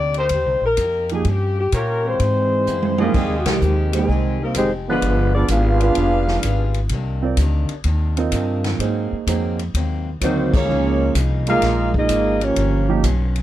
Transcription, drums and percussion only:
0.14 ride soft
0.29 kick soft
0.29 ride medium
0.77 kick soft
0.77 hi-hat pedal medium
0.77 ride medium
1.09 ride soft
1.25 kick soft
1.25 ride medium
1.72 kick soft
1.72 hi-hat pedal soft
1.72 ride medium
2.20 kick soft
2.20 ride medium
2.67 hi-hat pedal medium
2.82 high tom medium
2.98 high tom medium
3.14 kick medium
3.14 crash medium
3.46 snare medium
3.46 ride medium
3.61 hi-hat pedal medium
3.93 ride medium
4.09 kick soft
4.54 kick soft
4.54 hi-hat pedal medium
4.54 ride medium
5.02 kick soft
5.02 ride medium
5.48 kick soft
5.48 hi-hat pedal soft
5.48 ride medium
5.80 ride soft
5.95 kick soft
5.95 ride medium
6.28 snare soft
6.43 kick soft
6.43 hi-hat pedal medium
6.43 ride medium
6.74 ride soft
6.89 kick soft
6.89 ride medium
7.37 kick soft
7.37 hi-hat pedal soft
7.37 ride medium
7.69 ride soft
7.84 kick soft
7.84 ride medium
8.17 ride soft
8.32 kick soft
8.32 hi-hat pedal medium
8.32 ride medium
8.64 snare soft
8.64 ride soft
8.80 kick soft
8.80 ride medium
9.27 kick soft
9.27 hi-hat pedal medium
9.27 ride medium
9.59 ride soft
9.74 kick soft
9.74 ride medium
10.21 kick soft
10.21 hi-hat pedal medium
10.21 ride medium
10.54 kick medium
10.54 crash medium
11.15 kick soft
11.15 hi-hat pedal medium
11.15 ride medium
11.47 ride soft
11.62 kick soft
11.62 snare soft
11.62 ride medium
11.94 kick medium
12.09 kick soft
12.09 hi-hat pedal medium
12.09 ride medium
12.41 ride soft
12.56 kick soft
12.56 ride medium
13.04 kick soft
13.04 hi-hat pedal medium
13.04 ride medium
13.36 ride soft

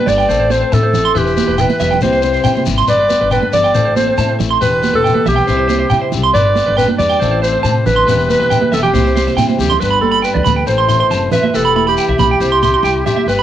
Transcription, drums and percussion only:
0.07 low conga medium
0.07 shekere medium
0.19 shekere soft
0.30 shekere medium
0.50 high conga medium
0.50 shekere medium
0.73 shekere medium
0.93 low conga medium
0.93 shekere medium
1.16 shekere medium
1.27 shekere soft
1.37 high conga medium
1.37 shekere medium
1.49 shekere soft
1.58 shekere medium
1.70 high conga medium
1.70 shekere soft
1.80 low conga medium
1.80 shekere medium
1.92 low conga medium
1.92 shekere soft
2.01 high conga medium
2.01 shekere medium
2.12 shekere soft
2.22 high conga medium
2.22 shekere medium
2.34 shekere soft
2.44 shekere medium
2.55 high conga medium
2.55 shekere soft
2.66 low conga medium
2.66 shekere medium
2.78 shekere soft
2.88 shekere medium
3.09 high conga medium
3.09 shekere medium
3.31 shekere medium
3.43 high conga medium
3.53 low conga medium
3.53 shekere medium
3.63 shekere soft
3.75 shekere medium
3.96 high conga medium
3.96 shekere medium
4.18 shekere medium
4.40 low conga medium
4.40 shekere medium
4.62 shekere medium
4.83 high conga medium
4.83 shekere medium
5.06 shekere medium
5.15 high conga medium
5.26 low conga medium
5.26 shekere medium
5.38 shekere soft
5.48 shekere medium
5.69 high conga medium
5.69 shekere medium
5.90 shekere medium
6.12 low conga medium
6.12 shekere medium
6.35 shekere medium
6.56 high conga medium
6.56 shekere medium
6.78 shekere medium
6.88 high conga medium
6.99 low conga medium
6.99 shekere medium
7.11 shekere soft
7.22 shekere medium
7.44 shekere medium
7.65 shekere loud
7.86 low conga medium
7.86 shekere medium
8.08 shekere loud
8.20 shekere soft
8.30 high conga medium
8.30 shekere medium
8.41 shekere soft
8.51 shekere loud
8.62 high conga medium
8.73 low conga medium
8.73 shekere medium
8.84 low conga medium
8.84 shekere soft
8.95 high conga medium
8.95 shekere medium
9.07 shekere soft
9.17 high conga medium
9.17 shekere medium
9.27 high conga medium
9.27 shekere soft
9.38 high conga medium
9.38 shekere loud
9.48 high conga medium
9.48 shekere soft
9.60 low conga medium
9.60 shekere medium
9.70 low conga medium
9.70 shekere soft
9.82 shekere medium
10.03 high conga medium
10.24 shekere medium
10.35 low conga medium
10.46 high conga medium
10.46 low conga medium
10.46 shekere medium
10.67 shekere medium
10.89 shekere loud
11.11 shekere medium
11.32 low conga medium
11.32 shekere loud
11.44 high conga medium
11.55 shekere medium
11.76 high conga medium
11.88 shekere soft
11.98 shekere medium
12.19 high conga medium
12.19 low conga medium
12.19 shekere medium
12.41 shekere medium
12.63 high conga medium
12.63 shekere medium
12.85 shekere medium
13.06 low conga medium
13.06 shekere medium
13.17 high conga medium
13.29 shekere medium

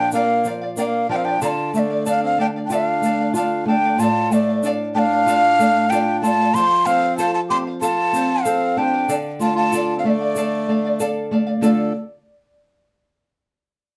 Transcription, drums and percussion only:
0.12 shaker medium
0.44 shaker medium
0.77 shaker medium
1.42 shaker medium
1.74 shaker medium
2.06 shaker loud
2.70 shaker medium
3.03 shaker medium
3.35 shaker medium
3.99 shaker medium
4.32 shaker medium
4.63 shaker loud
5.28 shaker medium
5.60 shaker medium
5.92 shaker medium
6.24 shaker medium
6.56 shaker medium
6.87 shaker medium
7.18 shaker loud
7.82 shaker loud
8.14 shaker medium
8.45 shaker loud
9.09 shaker loud
9.40 shaker medium
9.73 shaker loud
10.36 shaker medium
11.00 shaker medium
11.63 shaker medium

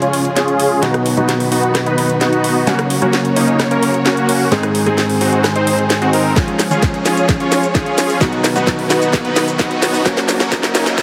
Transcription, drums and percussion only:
0.02 closed hi-hat soft
0.13 open hi-hat loud
0.25 closed hi-hat soft
0.36 snare soft
0.36 closed hi-hat medium
0.48 closed hi-hat soft
0.60 open hi-hat loud
0.83 snare medium
0.83 closed hi-hat medium
0.94 cross-stick medium
0.94 closed hi-hat soft
1.06 open hi-hat loud
1.17 closed hi-hat soft
1.29 snare medium
1.29 closed hi-hat medium
1.40 open hi-hat medium
1.52 open hi-hat loud
1.63 closed hi-hat soft
1.75 cross-stick medium
1.75 snare medium
1.75 closed hi-hat medium
1.86 closed hi-hat soft
1.98 open hi-hat loud
2.10 closed hi-hat soft
2.21 snare medium
2.21 closed hi-hat medium
2.33 closed hi-hat soft
2.44 open hi-hat loud
2.67 snare medium
2.67 closed hi-hat medium
2.79 cross-stick medium
2.79 closed hi-hat soft
2.90 open hi-hat loud
3.02 closed hi-hat soft
3.13 snare medium
3.13 closed hi-hat medium
3.25 closed hi-hat soft
3.36 open hi-hat loud
3.48 closed hi-hat soft
3.60 cross-stick medium
3.60 snare medium
3.60 closed hi-hat medium
3.71 closed hi-hat soft
3.83 open hi-hat loud
3.94 closed hi-hat soft
4.06 snare medium
4.06 closed hi-hat medium
4.17 closed hi-hat soft
4.29 open hi-hat loud
4.52 snare medium
4.52 closed hi-hat medium
4.63 cross-stick medium
4.63 closed hi-hat soft
4.75 open hi-hat loud
4.86 closed hi-hat soft
4.98 snare medium
4.98 closed hi-hat medium
5.10 open hi-hat medium
5.21 open hi-hat loud
5.33 closed hi-hat soft
5.44 cross-stick medium
5.44 snare medium
5.44 closed hi-hat medium
5.56 closed hi-hat soft
5.67 open hi-hat loud
5.79 closed hi-hat soft
5.90 snare medium
5.90 closed hi-hat medium
6.02 closed hi-hat soft
6.13 open hi-hat loud
6.36 kick loud
6.36 snare medium
6.36 closed hi-hat medium
6.36 shaker soft
6.48 closed hi-hat soft
6.59 snare medium
6.59 open hi-hat loud
6.59 shaker medium
6.71 closed hi-hat soft
6.71 shaker soft
6.82 kick loud
6.82 snare medium
6.82 closed hi-hat medium
6.82 shaker soft
6.94 closed hi-hat soft
7.06 snare medium
7.06 open hi-hat loud
7.06 shaker medium
7.17 closed hi-hat soft
7.17 shaker soft
7.29 kick loud
7.29 snare medium
7.29 closed hi-hat medium
7.29 shaker soft
7.40 closed hi-hat soft
7.52 snare medium
7.52 open hi-hat loud
7.52 shaker medium
7.63 closed hi-hat soft
7.63 shaker soft
7.75 kick loud
7.75 snare medium
7.75 closed hi-hat medium
7.75 shaker soft
7.86 closed hi-hat soft
7.98 snare medium
7.98 open hi-hat loud
7.98 shaker medium
8.10 shaker soft
8.21 kick loud
8.21 snare medium
8.21 closed hi-hat medium
8.21 shaker soft
8.33 closed hi-hat soft
8.44 snare medium
8.44 open hi-hat loud
8.44 shaker medium
8.56 closed hi-hat soft
8.56 shaker soft
8.67 kick loud
8.67 snare medium
8.67 closed hi-hat medium
8.67 shaker soft
8.79 open hi-hat medium
8.90 snare medium
8.90 open hi-hat loud
8.90 shaker medium
9.02 closed hi-hat soft
9.02 shaker soft
9.13 kick loud
9.13 snare medium
9.13 closed hi-hat medium
9.13 shaker soft
9.25 closed hi-hat soft
9.36 snare medium
9.36 open hi-hat loud
9.36 shaker medium
9.48 closed hi-hat soft
9.48 shaker soft
9.59 kick loud
9.59 snare medium
9.59 closed hi-hat medium
9.59 shaker soft
9.71 closed hi-hat soft
9.82 snare medium
9.82 open hi-hat loud
9.82 shaker medium
9.94 shaker soft
10.06 kick loud
10.06 snare medium
10.06 closed hi-hat loud
10.06 shaker soft
10.17 snare medium
10.17 closed hi-hat soft
10.29 snare medium
10.29 open hi-hat loud
10.29 shaker medium
10.40 snare medium
10.40 closed hi-hat soft
10.40 shaker soft
10.52 kick loud
10.52 snare loud
10.52 closed hi-hat medium
10.52 shaker soft
10.63 snare medium
10.63 closed hi-hat soft
10.75 snare loud
10.75 open hi-hat loud
10.75 shaker medium
10.86 snare medium
10.86 closed hi-hat soft
10.86 shaker soft
10.98 kick loud
10.98 snare medium
10.98 closed hi-hat loud
10.98 shaker soft

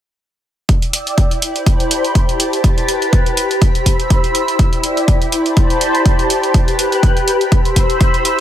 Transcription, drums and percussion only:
0.69 kick loud
0.69 closed hi-hat medium
0.82 closed hi-hat soft
0.93 closed hi-hat medium
1.07 closed hi-hat soft
1.18 kick loud
1.18 closed hi-hat medium
1.31 closed hi-hat soft
1.42 closed hi-hat medium
1.56 closed hi-hat soft
1.66 kick loud
1.66 closed hi-hat medium
1.80 closed hi-hat soft
1.91 closed hi-hat medium
2.05 closed hi-hat soft
2.15 kick loud
2.15 closed hi-hat medium
2.29 closed hi-hat soft
2.40 closed hi-hat medium
2.53 closed hi-hat soft
2.64 kick loud
2.64 closed hi-hat medium
2.78 closed hi-hat soft
2.88 closed hi-hat medium
3.02 closed hi-hat soft
3.13 kick loud
3.13 closed hi-hat medium
3.26 closed hi-hat soft
3.37 closed hi-hat medium
3.51 closed hi-hat soft
3.62 kick loud
3.62 closed hi-hat medium
3.75 closed hi-hat soft
3.86 kick medium
3.86 closed hi-hat medium
4.00 closed hi-hat soft
4.10 kick loud
4.10 closed hi-hat medium
4.24 closed hi-hat soft
4.35 closed hi-hat medium
4.48 closed hi-hat soft
4.59 kick loud
4.59 closed hi-hat medium
4.73 closed hi-hat soft
4.84 closed hi-hat medium
4.97 closed hi-hat soft
5.08 kick loud
5.08 closed hi-hat medium
5.22 closed hi-hat soft
5.32 closed hi-hat medium
5.46 closed hi-hat soft
5.57 kick loud
5.57 closed hi-hat medium
5.70 closed hi-hat soft
5.81 closed hi-hat medium
5.95 closed hi-hat soft
6.06 kick loud
6.06 closed hi-hat medium
6.19 closed hi-hat soft
6.30 closed hi-hat medium
6.43 closed hi-hat soft
6.54 kick loud
6.54 closed hi-hat medium
6.68 closed hi-hat soft
6.79 closed hi-hat medium
6.92 closed hi-hat soft
7.03 kick loud
7.03 closed hi-hat medium
7.17 closed hi-hat soft
7.28 closed hi-hat medium
7.41 closed hi-hat soft
7.52 kick loud
7.52 closed hi-hat medium
7.65 closed hi-hat soft
7.76 kick medium
7.76 closed hi-hat medium
7.90 closed hi-hat soft
8.01 kick loud
8.01 closed hi-hat medium
8.14 closed hi-hat soft
8.25 closed hi-hat medium

